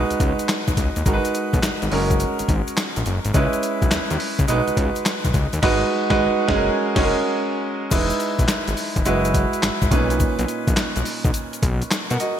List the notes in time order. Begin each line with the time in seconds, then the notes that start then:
Already playing: G#3 D#4 F#4 B4
0.10 C#2, closed hi-hat, shaker
0.20 C#2, kick, closed hi-hat, shaker
0.39 closed hi-hat, shaker
0.49 snare, clap, closed hi-hat, shaker
0.68 B1, kick, closed hi-hat, shaker
0.77 C#2, kick, closed hi-hat, shaker
0.96 D#2, closed hi-hat, shaker
1.06 G#1 G#3 D#4 F#4 A#4, kick, closed hi-hat, shaker
1.13 B4
1.25 closed hi-hat, shaker
1.34 closed hi-hat, shaker
1.53 B1, kick, closed hi-hat, shaker
1.63 G#1, snare, clap, closed hi-hat, shaker
1.82 G#1, closed hi-hat, shaker
1.91 F#1 G#3 C#4 F#4 A#4, open hi-hat
2.10 kick, closed hi-hat, shaker
2.20 closed hi-hat, shaker
2.39 G#1, closed hi-hat, shaker
2.48 G#1, kick, closed hi-hat, shaker
2.67 closed hi-hat, shaker
2.77 snare, clap, closed hi-hat, shaker
2.96 A#1, closed hi-hat, shaker
3.06 F#1, closed hi-hat, shaker
3.25 G#1, closed hi-hat, shaker
3.33 C#2 G#3 C#4 E4 B4, kick, closed hi-hat, shaker
3.53 closed hi-hat, shaker
3.63 closed hi-hat, shaker
3.82 B1, kick, closed hi-hat, shaker
3.91 D#2, snare, clap, closed hi-hat, shaker
4.10 D#2, closed hi-hat, shaker
4.20 open hi-hat
4.39 C#2, kick, closed hi-hat, shaker
4.47 B1 G#3 D#4 F#4 B4, closed hi-hat, shaker
4.68 C#2, closed hi-hat, shaker
4.77 C#2, kick, closed hi-hat, shaker
4.96 closed hi-hat, shaker
5.05 snare, clap, closed hi-hat, shaker
5.24 B1, kick, closed hi-hat, shaker
5.34 C#2, kick, closed hi-hat, shaker
5.53 D#2, closed hi-hat, shaker
5.62 G#1 G#3 D#4 F#4 B4, kick, snare, crash
6.10 G#1 G#3 D#4 F#4 B4, kick, snare
6.47 F#1 G#3 C#4 F#4 G#4, kick, snare
6.56 A#4
6.95 F#1 G#3 C#4 F#4 G#4, kick, snare, crash
7.04 A#4
7.90 E1 G#3 D#4 E4 B4, kick, closed hi-hat, crash, shaker
8.10 closed hi-hat, shaker
8.20 closed hi-hat, shaker
8.39 B1, kick, closed hi-hat, shaker
8.48 snare, clap, closed hi-hat, shaker
8.67 G#1, closed hi-hat, shaker
8.77 open hi-hat, shaker
8.96 E1, kick, closed hi-hat, shaker
9.05 F#1 G#3 E4 F#4 B4, closed hi-hat, shaker
9.25 closed hi-hat, shaker
9.34 kick, closed hi-hat, shaker
9.53 closed hi-hat, shaker
9.63 G#1, snare, clap, closed hi-hat, shaker
9.82 G#1, kick, closed hi-hat, shaker
9.90 B1 A#2 C#4 D#4 B4, kick, closed hi-hat, shaker
10.10 closed hi-hat, shaker
10.20 kick, closed hi-hat, shaker
10.39 B1, closed hi-hat, shaker
10.48 closed hi-hat, shaker
10.67 A#1, kick, closed hi-hat, shaker
10.77 snare, clap, closed hi-hat, shaker
10.96 B1, closed hi-hat, shaker
11.05 open hi-hat, shaker
11.24 B1, kick, closed hi-hat, shaker
11.34 closed hi-hat, shaker
11.53 closed hi-hat, shaker
11.62 B1, kick, closed hi-hat, shaker
11.82 closed hi-hat, shaker
11.91 snare, clap, closed hi-hat, shaker
12.10 B2 A#4 F#5, closed hi-hat, shaker
12.20 F#4 D#5, closed hi-hat, shaker